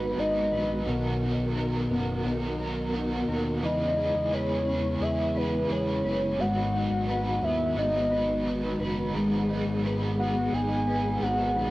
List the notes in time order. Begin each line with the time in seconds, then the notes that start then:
Already playing: G#1 G#2 D#3 F#3 G#3 B3 D#4 F#4 B4
0.18 G#1 G#2 D#3 F#3 B3 D#4 B4 D#5
0.51 A#1 B3 D#4 B4
0.57 F#3
0.86 B1 B2 D#3 F#3 B3 F#4 A#4
1.20 B3 D#4 F#4 A#4
1.25 F#3
1.38 B1
1.56 B2 D#3 F#3 B3 F#4 A#4
1.89 F#1 B3 F#4 A#4
1.95 F#3
2.24 B1 F#3 B3 D#4 F#4
2.29 A#4
2.59 B3 F#4 A#4
2.64 F#3
2.93 B2 D#3 F#3 B3 D#4 F#4 A#4
3.28 D#2 B3 F#4 A#4
3.32 F#3
3.62 E2 C#3 E3 G#3 C#4 E4 G#4 B4 D#5
3.96 G#4 B4
4.01 C#4
4.15 E2
4.31 E3 G#3 C#4 G#4 B4 C#5
4.65 G#4 B4
4.71 C#4
5.00 E2 G#3 C#4 G#4 E5
5.05 B4
5.35 G#4 B4
5.40 C#4
5.70 E2 E3 G#3 C#4 G#4 B4 C#5
6.03 F#1 G#4 B4
6.09 C#4
6.38 G#1 G#2 D#3 F#3 B3 D#4 F#4 B4 F#5
6.73 B3 D#4 B4
6.77 F#3
6.90 G#1
7.08 G#2 D#3 F#3 B3 D#4 B4
7.41 D#2 B3 B4 E5
7.46 F#3
7.76 G#1 F#3 B3 D#4 D#5
7.81 B4
8.11 B3 D#4 B4
8.16 F#3
8.45 G#2 D#3 F#3 B3 D#4 B4
8.79 F#1 B3 D#4 B4
8.84 F#3
9.14 G#1 G#2 D#3 F#3 B3 D#4 G#4 B4
9.48 B3 D#4 B4
9.53 F#3
9.66 G#1
9.83 G#2 D#3 F#3 B3 D#4 B4
10.17 B3 D#4 B4 F#5
10.22 F#3
10.52 G#1 F#3 B3 D#4 G#5
10.57 B4
10.87 B3 D#4 B4
10.92 F#3
11.21 G#1 G#2 D#3 F#3 B3 D#4 B4 F#5
11.56 A#1 B3 D#4 B4
11.61 F#3